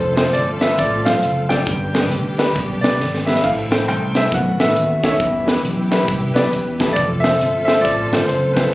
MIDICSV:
0, 0, Header, 1, 7, 480
1, 0, Start_track
1, 0, Tempo, 441176
1, 1815, Time_signature, 4, 2, 24, 8
1, 9511, End_track
2, 0, Start_track
2, 0, Title_t, "Grand piano"
2, 0, Program_c, 0, 0
2, 0, Note_on_c, 0, 72, 79
2, 156, Note_off_c, 0, 72, 0
2, 172, Note_on_c, 0, 72, 73
2, 360, Note_on_c, 0, 74, 83
2, 368, Note_off_c, 0, 72, 0
2, 429, Note_off_c, 0, 74, 0
2, 663, Note_on_c, 0, 76, 85
2, 850, Note_on_c, 0, 74, 78
2, 854, Note_off_c, 0, 76, 0
2, 1145, Note_on_c, 0, 77, 102
2, 1162, Note_off_c, 0, 74, 0
2, 1624, Note_on_c, 0, 79, 97
2, 1645, Note_off_c, 0, 77, 0
2, 2246, Note_off_c, 0, 79, 0
2, 3060, Note_on_c, 0, 74, 84
2, 3552, Note_on_c, 0, 76, 73
2, 3563, Note_off_c, 0, 74, 0
2, 3736, Note_on_c, 0, 77, 90
2, 3739, Note_off_c, 0, 76, 0
2, 3804, Note_off_c, 0, 77, 0
2, 4045, Note_on_c, 0, 79, 85
2, 4213, Note_off_c, 0, 79, 0
2, 4230, Note_on_c, 0, 79, 93
2, 4532, Note_on_c, 0, 76, 88
2, 4533, Note_off_c, 0, 79, 0
2, 4586, Note_off_c, 0, 76, 0
2, 4725, Note_on_c, 0, 78, 80
2, 5003, Note_on_c, 0, 76, 78
2, 5020, Note_off_c, 0, 78, 0
2, 5469, Note_off_c, 0, 76, 0
2, 5485, Note_on_c, 0, 76, 74
2, 5928, Note_off_c, 0, 76, 0
2, 6894, Note_on_c, 0, 71, 77
2, 7537, Note_on_c, 0, 74, 91
2, 7585, Note_off_c, 0, 71, 0
2, 7609, Note_off_c, 0, 74, 0
2, 7835, Note_on_c, 0, 76, 89
2, 8307, Note_off_c, 0, 76, 0
2, 8324, Note_on_c, 0, 76, 94
2, 8498, Note_on_c, 0, 74, 89
2, 8525, Note_off_c, 0, 76, 0
2, 8979, Note_on_c, 0, 72, 83
2, 9011, Note_off_c, 0, 74, 0
2, 9280, Note_on_c, 0, 71, 66
2, 9307, Note_off_c, 0, 72, 0
2, 9511, Note_off_c, 0, 71, 0
2, 9511, End_track
3, 0, Start_track
3, 0, Title_t, "Grand piano"
3, 0, Program_c, 1, 0
3, 176, Note_on_c, 1, 60, 70
3, 179, Note_on_c, 1, 65, 66
3, 184, Note_on_c, 1, 69, 56
3, 193, Note_on_c, 1, 72, 78
3, 292, Note_off_c, 1, 60, 0
3, 293, Note_off_c, 1, 65, 0
3, 296, Note_off_c, 1, 69, 0
3, 300, Note_off_c, 1, 72, 0
3, 661, Note_on_c, 1, 60, 68
3, 664, Note_on_c, 1, 65, 62
3, 669, Note_on_c, 1, 69, 60
3, 674, Note_on_c, 1, 71, 70
3, 774, Note_off_c, 1, 60, 0
3, 776, Note_off_c, 1, 65, 0
3, 778, Note_off_c, 1, 69, 0
3, 781, Note_off_c, 1, 71, 0
3, 1142, Note_on_c, 1, 60, 70
3, 1148, Note_on_c, 1, 65, 65
3, 1152, Note_on_c, 1, 69, 65
3, 1156, Note_on_c, 1, 72, 76
3, 1255, Note_off_c, 1, 60, 0
3, 1258, Note_off_c, 1, 65, 0
3, 1260, Note_off_c, 1, 69, 0
3, 1262, Note_off_c, 1, 72, 0
3, 1622, Note_on_c, 1, 60, 67
3, 1625, Note_on_c, 1, 65, 65
3, 1630, Note_on_c, 1, 69, 61
3, 1636, Note_on_c, 1, 74, 77
3, 1735, Note_off_c, 1, 60, 0
3, 1736, Note_off_c, 1, 65, 0
3, 1739, Note_off_c, 1, 69, 0
3, 1742, Note_off_c, 1, 74, 0
3, 1812, Note_on_c, 1, 43, 56
3, 2107, Note_on_c, 1, 59, 65
3, 2107, Note_on_c, 1, 62, 59
3, 2112, Note_on_c, 1, 67, 61
3, 2125, Note_on_c, 1, 71, 76
3, 2218, Note_off_c, 1, 59, 0
3, 2218, Note_off_c, 1, 62, 0
3, 2220, Note_off_c, 1, 67, 0
3, 2226, Note_off_c, 1, 71, 0
3, 2551, Note_off_c, 1, 43, 0
3, 2593, Note_on_c, 1, 59, 83
3, 2596, Note_on_c, 1, 62, 72
3, 2603, Note_on_c, 1, 67, 73
3, 2603, Note_on_c, 1, 71, 90
3, 2701, Note_off_c, 1, 59, 0
3, 2702, Note_off_c, 1, 62, 0
3, 2706, Note_off_c, 1, 67, 0
3, 2706, Note_off_c, 1, 71, 0
3, 3078, Note_on_c, 1, 59, 62
3, 3081, Note_on_c, 1, 62, 63
3, 3085, Note_on_c, 1, 67, 66
3, 3090, Note_on_c, 1, 71, 76
3, 3183, Note_off_c, 1, 59, 0
3, 3185, Note_off_c, 1, 62, 0
3, 3187, Note_off_c, 1, 67, 0
3, 3189, Note_off_c, 1, 71, 0
3, 3554, Note_on_c, 1, 59, 67
3, 3562, Note_on_c, 1, 62, 63
3, 3565, Note_on_c, 1, 67, 62
3, 3567, Note_on_c, 1, 71, 74
3, 3662, Note_off_c, 1, 59, 0
3, 3665, Note_off_c, 1, 62, 0
3, 3667, Note_off_c, 1, 67, 0
3, 3668, Note_off_c, 1, 71, 0
3, 3740, Note_on_c, 1, 45, 54
3, 4033, Note_on_c, 1, 60, 62
3, 4036, Note_on_c, 1, 64, 57
3, 4038, Note_on_c, 1, 69, 62
3, 4044, Note_on_c, 1, 72, 68
3, 4141, Note_off_c, 1, 60, 0
3, 4142, Note_off_c, 1, 64, 0
3, 4143, Note_off_c, 1, 69, 0
3, 4146, Note_off_c, 1, 72, 0
3, 4476, Note_off_c, 1, 45, 0
3, 4516, Note_on_c, 1, 60, 66
3, 4524, Note_on_c, 1, 64, 64
3, 4532, Note_on_c, 1, 69, 62
3, 4534, Note_on_c, 1, 72, 70
3, 4623, Note_off_c, 1, 60, 0
3, 4626, Note_off_c, 1, 64, 0
3, 4631, Note_off_c, 1, 69, 0
3, 4632, Note_off_c, 1, 72, 0
3, 4702, Note_on_c, 1, 47, 60
3, 5005, Note_on_c, 1, 63, 65
3, 5010, Note_on_c, 1, 69, 61
3, 5013, Note_on_c, 1, 66, 64
3, 5018, Note_on_c, 1, 71, 73
3, 5107, Note_off_c, 1, 63, 0
3, 5110, Note_off_c, 1, 69, 0
3, 5111, Note_off_c, 1, 66, 0
3, 5114, Note_off_c, 1, 71, 0
3, 5436, Note_off_c, 1, 47, 0
3, 5472, Note_on_c, 1, 63, 67
3, 5478, Note_on_c, 1, 66, 59
3, 5485, Note_on_c, 1, 69, 63
3, 5489, Note_on_c, 1, 73, 74
3, 5581, Note_off_c, 1, 63, 0
3, 5584, Note_off_c, 1, 66, 0
3, 5587, Note_off_c, 1, 69, 0
3, 5589, Note_off_c, 1, 73, 0
3, 5651, Note_on_c, 1, 52, 59
3, 5944, Note_on_c, 1, 59, 65
3, 5947, Note_on_c, 1, 64, 61
3, 5954, Note_on_c, 1, 67, 59
3, 5958, Note_on_c, 1, 71, 73
3, 6057, Note_off_c, 1, 59, 0
3, 6058, Note_off_c, 1, 64, 0
3, 6062, Note_off_c, 1, 67, 0
3, 6064, Note_off_c, 1, 71, 0
3, 6391, Note_off_c, 1, 52, 0
3, 6428, Note_on_c, 1, 59, 80
3, 6432, Note_on_c, 1, 64, 73
3, 6440, Note_on_c, 1, 67, 70
3, 6446, Note_on_c, 1, 71, 89
3, 6539, Note_off_c, 1, 59, 0
3, 6541, Note_off_c, 1, 64, 0
3, 6545, Note_off_c, 1, 67, 0
3, 6548, Note_off_c, 1, 71, 0
3, 6901, Note_on_c, 1, 59, 70
3, 6904, Note_on_c, 1, 64, 62
3, 6907, Note_on_c, 1, 67, 59
3, 6916, Note_on_c, 1, 74, 75
3, 7015, Note_off_c, 1, 59, 0
3, 7017, Note_off_c, 1, 64, 0
3, 7018, Note_off_c, 1, 67, 0
3, 7022, Note_off_c, 1, 74, 0
3, 7393, Note_on_c, 1, 59, 67
3, 7393, Note_on_c, 1, 64, 63
3, 7400, Note_on_c, 1, 67, 60
3, 7404, Note_on_c, 1, 69, 80
3, 7501, Note_off_c, 1, 59, 0
3, 7501, Note_off_c, 1, 64, 0
3, 7504, Note_off_c, 1, 67, 0
3, 7506, Note_off_c, 1, 69, 0
3, 7865, Note_on_c, 1, 60, 71
3, 7873, Note_on_c, 1, 65, 57
3, 7874, Note_on_c, 1, 69, 63
3, 7878, Note_on_c, 1, 72, 68
3, 7977, Note_off_c, 1, 60, 0
3, 7981, Note_off_c, 1, 65, 0
3, 7981, Note_off_c, 1, 69, 0
3, 7983, Note_off_c, 1, 72, 0
3, 8344, Note_on_c, 1, 60, 67
3, 8347, Note_on_c, 1, 65, 58
3, 8355, Note_on_c, 1, 69, 64
3, 8357, Note_on_c, 1, 72, 74
3, 8456, Note_off_c, 1, 60, 0
3, 8458, Note_off_c, 1, 65, 0
3, 8462, Note_off_c, 1, 69, 0
3, 8463, Note_off_c, 1, 72, 0
3, 8831, Note_on_c, 1, 60, 70
3, 8841, Note_on_c, 1, 65, 64
3, 8843, Note_on_c, 1, 69, 67
3, 8849, Note_on_c, 1, 72, 78
3, 8940, Note_off_c, 1, 60, 0
3, 8944, Note_off_c, 1, 65, 0
3, 8945, Note_off_c, 1, 69, 0
3, 8949, Note_off_c, 1, 72, 0
3, 9309, Note_on_c, 1, 60, 66
3, 9313, Note_on_c, 1, 65, 64
3, 9319, Note_on_c, 1, 69, 60
3, 9321, Note_on_c, 1, 72, 77
3, 9418, Note_off_c, 1, 60, 0
3, 9420, Note_off_c, 1, 65, 0
3, 9423, Note_off_c, 1, 69, 0
3, 9424, Note_off_c, 1, 72, 0
3, 9511, End_track
4, 0, Start_track
4, 0, Title_t, "String section"
4, 0, Program_c, 2, 48
4, 0, Note_on_c, 2, 57, 75
4, 0, Note_on_c, 2, 60, 74
4, 0, Note_on_c, 2, 65, 69
4, 0, Note_on_c, 2, 69, 76
4, 1786, Note_off_c, 2, 69, 0
4, 1801, Note_off_c, 2, 57, 0
4, 1802, Note_off_c, 2, 65, 0
4, 1804, Note_off_c, 2, 60, 0
4, 1809, Note_on_c, 2, 59, 69
4, 1812, Note_on_c, 2, 62, 68
4, 1816, Note_on_c, 2, 67, 85
4, 1818, Note_on_c, 2, 55, 75
4, 3713, Note_off_c, 2, 59, 0
4, 3715, Note_off_c, 2, 62, 0
4, 3717, Note_off_c, 2, 67, 0
4, 3718, Note_off_c, 2, 55, 0
4, 3732, Note_on_c, 2, 57, 79
4, 3735, Note_on_c, 2, 60, 64
4, 3737, Note_on_c, 2, 64, 60
4, 3740, Note_on_c, 2, 69, 75
4, 4671, Note_on_c, 2, 66, 72
4, 4676, Note_on_c, 2, 59, 65
4, 4678, Note_on_c, 2, 51, 65
4, 4686, Note_off_c, 2, 60, 0
4, 4687, Note_off_c, 2, 64, 0
4, 4689, Note_off_c, 2, 69, 0
4, 5634, Note_off_c, 2, 66, 0
4, 5635, Note_off_c, 2, 57, 0
4, 5638, Note_off_c, 2, 51, 0
4, 5643, Note_on_c, 2, 67, 81
4, 5646, Note_on_c, 2, 55, 77
4, 5648, Note_on_c, 2, 64, 69
4, 7537, Note_off_c, 2, 59, 0
4, 7550, Note_off_c, 2, 67, 0
4, 7552, Note_off_c, 2, 55, 0
4, 7552, Note_off_c, 2, 64, 0
4, 7575, Note_on_c, 2, 65, 69
4, 7584, Note_on_c, 2, 57, 74
4, 7585, Note_on_c, 2, 60, 71
4, 7588, Note_on_c, 2, 69, 90
4, 9475, Note_off_c, 2, 65, 0
4, 9479, Note_off_c, 2, 57, 0
4, 9480, Note_off_c, 2, 60, 0
4, 9481, Note_off_c, 2, 69, 0
4, 9511, End_track
5, 0, Start_track
5, 0, Title_t, "Tonewheel organ"
5, 0, Program_c, 3, 16
5, 0, Note_on_c, 3, 53, 64
5, 0, Note_on_c, 3, 57, 53
5, 0, Note_on_c, 3, 60, 53
5, 0, Note_on_c, 3, 69, 75
5, 1788, Note_off_c, 3, 69, 0
5, 1791, Note_off_c, 3, 60, 0
5, 1792, Note_off_c, 3, 57, 0
5, 1796, Note_off_c, 3, 53, 0
5, 1807, Note_on_c, 3, 55, 49
5, 1810, Note_on_c, 3, 50, 59
5, 1811, Note_on_c, 3, 67, 65
5, 1812, Note_on_c, 3, 59, 53
5, 3713, Note_off_c, 3, 55, 0
5, 3714, Note_off_c, 3, 50, 0
5, 3715, Note_off_c, 3, 59, 0
5, 3715, Note_off_c, 3, 67, 0
5, 3728, Note_on_c, 3, 69, 60
5, 3729, Note_on_c, 3, 57, 53
5, 3733, Note_on_c, 3, 52, 57
5, 3736, Note_on_c, 3, 60, 52
5, 4682, Note_off_c, 3, 69, 0
5, 4685, Note_off_c, 3, 52, 0
5, 4686, Note_off_c, 3, 60, 0
5, 4695, Note_on_c, 3, 59, 61
5, 4696, Note_on_c, 3, 51, 63
5, 4700, Note_on_c, 3, 66, 68
5, 5634, Note_off_c, 3, 57, 0
5, 5647, Note_off_c, 3, 51, 0
5, 5648, Note_off_c, 3, 66, 0
5, 5663, Note_on_c, 3, 52, 57
5, 5666, Note_on_c, 3, 55, 52
5, 5669, Note_on_c, 3, 67, 62
5, 7546, Note_off_c, 3, 59, 0
5, 7560, Note_off_c, 3, 52, 0
5, 7561, Note_off_c, 3, 55, 0
5, 7563, Note_off_c, 3, 67, 0
5, 7568, Note_on_c, 3, 60, 53
5, 7570, Note_on_c, 3, 69, 67
5, 7571, Note_on_c, 3, 57, 57
5, 7574, Note_on_c, 3, 53, 62
5, 9471, Note_off_c, 3, 60, 0
5, 9472, Note_off_c, 3, 69, 0
5, 9473, Note_off_c, 3, 57, 0
5, 9474, Note_off_c, 3, 53, 0
5, 9511, End_track
6, 0, Start_track
6, 0, Title_t, "Fingered electric bass"
6, 0, Program_c, 4, 33
6, 0, Note_on_c, 4, 29, 96
6, 303, Note_off_c, 4, 29, 0
6, 378, Note_on_c, 4, 31, 90
6, 856, Note_off_c, 4, 31, 0
6, 856, Note_on_c, 4, 33, 86
6, 1111, Note_off_c, 4, 33, 0
6, 1159, Note_on_c, 4, 35, 87
6, 1310, Note_off_c, 4, 35, 0
6, 1344, Note_on_c, 4, 30, 87
6, 1748, Note_off_c, 4, 30, 0
6, 1813, Note_on_c, 4, 31, 101
6, 2306, Note_off_c, 4, 31, 0
6, 2306, Note_on_c, 4, 38, 81
6, 2709, Note_off_c, 4, 38, 0
6, 2781, Note_on_c, 4, 35, 81
6, 3034, Note_off_c, 4, 35, 0
6, 3067, Note_on_c, 4, 36, 79
6, 3224, Note_off_c, 4, 36, 0
6, 3250, Note_on_c, 4, 32, 80
6, 3661, Note_off_c, 4, 32, 0
6, 3738, Note_on_c, 4, 33, 102
6, 4219, Note_off_c, 4, 33, 0
6, 4219, Note_on_c, 4, 36, 85
6, 4626, Note_off_c, 4, 36, 0
6, 4703, Note_on_c, 4, 35, 95
6, 4956, Note_off_c, 4, 35, 0
6, 4999, Note_on_c, 4, 33, 90
6, 5151, Note_off_c, 4, 33, 0
6, 5174, Note_on_c, 4, 39, 80
6, 5583, Note_off_c, 4, 39, 0
6, 5652, Note_on_c, 4, 40, 98
6, 6062, Note_off_c, 4, 40, 0
6, 6129, Note_on_c, 4, 35, 92
6, 6540, Note_off_c, 4, 35, 0
6, 6615, Note_on_c, 4, 36, 82
6, 6871, Note_off_c, 4, 36, 0
6, 6918, Note_on_c, 4, 35, 81
6, 7070, Note_off_c, 4, 35, 0
6, 7095, Note_on_c, 4, 40, 84
6, 7503, Note_off_c, 4, 40, 0
6, 7575, Note_on_c, 4, 29, 95
6, 7983, Note_off_c, 4, 29, 0
6, 8050, Note_on_c, 4, 31, 92
6, 8536, Note_off_c, 4, 31, 0
6, 8536, Note_on_c, 4, 33, 82
6, 8791, Note_off_c, 4, 33, 0
6, 8832, Note_on_c, 4, 31, 80
6, 8986, Note_off_c, 4, 31, 0
6, 9013, Note_on_c, 4, 30, 89
6, 9421, Note_off_c, 4, 30, 0
6, 9511, End_track
7, 0, Start_track
7, 0, Title_t, "Drums"
7, 190, Note_on_c, 9, 38, 113
7, 194, Note_on_c, 9, 42, 58
7, 298, Note_off_c, 9, 38, 0
7, 303, Note_off_c, 9, 42, 0
7, 374, Note_on_c, 9, 42, 94
7, 483, Note_off_c, 9, 42, 0
7, 666, Note_on_c, 9, 38, 98
7, 672, Note_on_c, 9, 42, 66
7, 775, Note_off_c, 9, 38, 0
7, 781, Note_off_c, 9, 42, 0
7, 851, Note_on_c, 9, 42, 92
7, 857, Note_on_c, 9, 36, 115
7, 960, Note_off_c, 9, 42, 0
7, 966, Note_off_c, 9, 36, 0
7, 1157, Note_on_c, 9, 38, 92
7, 1162, Note_on_c, 9, 42, 62
7, 1266, Note_off_c, 9, 38, 0
7, 1271, Note_off_c, 9, 42, 0
7, 1333, Note_on_c, 9, 42, 86
7, 1442, Note_off_c, 9, 42, 0
7, 1635, Note_on_c, 9, 42, 62
7, 1638, Note_on_c, 9, 36, 77
7, 1638, Note_on_c, 9, 38, 92
7, 1744, Note_off_c, 9, 42, 0
7, 1746, Note_off_c, 9, 36, 0
7, 1747, Note_off_c, 9, 38, 0
7, 1811, Note_on_c, 9, 42, 90
7, 1816, Note_on_c, 9, 36, 106
7, 1920, Note_off_c, 9, 42, 0
7, 1925, Note_off_c, 9, 36, 0
7, 2120, Note_on_c, 9, 38, 115
7, 2125, Note_on_c, 9, 42, 62
7, 2229, Note_off_c, 9, 38, 0
7, 2233, Note_off_c, 9, 42, 0
7, 2301, Note_on_c, 9, 42, 92
7, 2410, Note_off_c, 9, 42, 0
7, 2601, Note_on_c, 9, 38, 95
7, 2607, Note_on_c, 9, 42, 62
7, 2710, Note_off_c, 9, 38, 0
7, 2716, Note_off_c, 9, 42, 0
7, 2783, Note_on_c, 9, 36, 109
7, 2785, Note_on_c, 9, 42, 87
7, 2892, Note_off_c, 9, 36, 0
7, 2893, Note_off_c, 9, 42, 0
7, 3093, Note_on_c, 9, 38, 101
7, 3098, Note_on_c, 9, 42, 65
7, 3202, Note_off_c, 9, 38, 0
7, 3207, Note_off_c, 9, 42, 0
7, 3268, Note_on_c, 9, 38, 55
7, 3377, Note_off_c, 9, 38, 0
7, 3422, Note_on_c, 9, 38, 56
7, 3531, Note_off_c, 9, 38, 0
7, 3562, Note_on_c, 9, 38, 72
7, 3650, Note_off_c, 9, 38, 0
7, 3650, Note_on_c, 9, 38, 82
7, 3739, Note_on_c, 9, 49, 80
7, 3741, Note_on_c, 9, 36, 110
7, 3759, Note_off_c, 9, 38, 0
7, 3847, Note_off_c, 9, 49, 0
7, 3850, Note_off_c, 9, 36, 0
7, 4046, Note_on_c, 9, 38, 119
7, 4051, Note_on_c, 9, 42, 60
7, 4155, Note_off_c, 9, 38, 0
7, 4160, Note_off_c, 9, 42, 0
7, 4230, Note_on_c, 9, 42, 88
7, 4339, Note_off_c, 9, 42, 0
7, 4517, Note_on_c, 9, 38, 101
7, 4522, Note_on_c, 9, 42, 65
7, 4626, Note_off_c, 9, 38, 0
7, 4631, Note_off_c, 9, 42, 0
7, 4701, Note_on_c, 9, 36, 114
7, 4702, Note_on_c, 9, 42, 85
7, 4810, Note_off_c, 9, 36, 0
7, 4811, Note_off_c, 9, 42, 0
7, 5004, Note_on_c, 9, 38, 101
7, 5009, Note_on_c, 9, 42, 61
7, 5113, Note_off_c, 9, 38, 0
7, 5118, Note_off_c, 9, 42, 0
7, 5180, Note_on_c, 9, 42, 88
7, 5289, Note_off_c, 9, 42, 0
7, 5476, Note_on_c, 9, 42, 68
7, 5479, Note_on_c, 9, 36, 78
7, 5479, Note_on_c, 9, 38, 102
7, 5585, Note_off_c, 9, 42, 0
7, 5587, Note_off_c, 9, 36, 0
7, 5588, Note_off_c, 9, 38, 0
7, 5658, Note_on_c, 9, 36, 100
7, 5660, Note_on_c, 9, 42, 84
7, 5767, Note_off_c, 9, 36, 0
7, 5768, Note_off_c, 9, 42, 0
7, 5960, Note_on_c, 9, 38, 115
7, 5965, Note_on_c, 9, 42, 59
7, 6069, Note_off_c, 9, 38, 0
7, 6074, Note_off_c, 9, 42, 0
7, 6145, Note_on_c, 9, 42, 88
7, 6254, Note_off_c, 9, 42, 0
7, 6438, Note_on_c, 9, 38, 101
7, 6443, Note_on_c, 9, 42, 60
7, 6547, Note_off_c, 9, 38, 0
7, 6552, Note_off_c, 9, 42, 0
7, 6619, Note_on_c, 9, 36, 109
7, 6619, Note_on_c, 9, 42, 84
7, 6727, Note_off_c, 9, 36, 0
7, 6728, Note_off_c, 9, 42, 0
7, 6921, Note_on_c, 9, 38, 96
7, 6925, Note_on_c, 9, 42, 58
7, 7029, Note_off_c, 9, 38, 0
7, 7034, Note_off_c, 9, 42, 0
7, 7104, Note_on_c, 9, 42, 87
7, 7212, Note_off_c, 9, 42, 0
7, 7399, Note_on_c, 9, 36, 79
7, 7403, Note_on_c, 9, 42, 63
7, 7405, Note_on_c, 9, 38, 100
7, 7508, Note_off_c, 9, 36, 0
7, 7511, Note_off_c, 9, 42, 0
7, 7514, Note_off_c, 9, 38, 0
7, 7575, Note_on_c, 9, 42, 90
7, 7577, Note_on_c, 9, 36, 113
7, 7684, Note_off_c, 9, 42, 0
7, 7686, Note_off_c, 9, 36, 0
7, 7878, Note_on_c, 9, 38, 112
7, 7883, Note_on_c, 9, 42, 62
7, 7987, Note_off_c, 9, 38, 0
7, 7992, Note_off_c, 9, 42, 0
7, 8062, Note_on_c, 9, 42, 93
7, 8171, Note_off_c, 9, 42, 0
7, 8356, Note_on_c, 9, 38, 95
7, 8362, Note_on_c, 9, 42, 61
7, 8465, Note_off_c, 9, 38, 0
7, 8471, Note_off_c, 9, 42, 0
7, 8540, Note_on_c, 9, 36, 114
7, 8542, Note_on_c, 9, 42, 87
7, 8649, Note_off_c, 9, 36, 0
7, 8651, Note_off_c, 9, 42, 0
7, 8843, Note_on_c, 9, 38, 95
7, 8848, Note_on_c, 9, 42, 61
7, 8952, Note_off_c, 9, 38, 0
7, 8956, Note_off_c, 9, 42, 0
7, 9020, Note_on_c, 9, 42, 91
7, 9129, Note_off_c, 9, 42, 0
7, 9319, Note_on_c, 9, 36, 81
7, 9321, Note_on_c, 9, 42, 64
7, 9324, Note_on_c, 9, 38, 99
7, 9428, Note_off_c, 9, 36, 0
7, 9430, Note_off_c, 9, 42, 0
7, 9432, Note_off_c, 9, 38, 0
7, 9511, End_track
0, 0, End_of_file